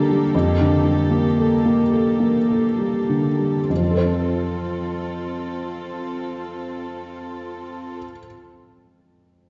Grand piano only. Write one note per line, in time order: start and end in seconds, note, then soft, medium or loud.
0.00 0.30 F2 medium
0.00 0.24 D3 soft
0.00 0.10 G3 soft
0.00 0.35 A#3 soft
0.00 0.36 A4 soft
0.10 0.49 G3 soft
0.35 3.66 F2 medium
0.61 1.00 D3 soft
0.85 1.26 G3 soft
1.11 1.53 A#3 soft
1.38 1.80 A4 soft
1.65 2.08 A#3 soft
1.91 2.36 A4 soft
2.20 2.66 A#3 soft
2.49 2.96 A4 soft
2.78 3.27 G3 soft
3.09 3.58 D3 soft
3.39 3.69 G3 soft
3.70 7.98 F2 soft
3.76 8.04 F3 soft
3.84 8.11 C4 soft
3.91 8.19 A4 soft
3.97 8.25 C5 soft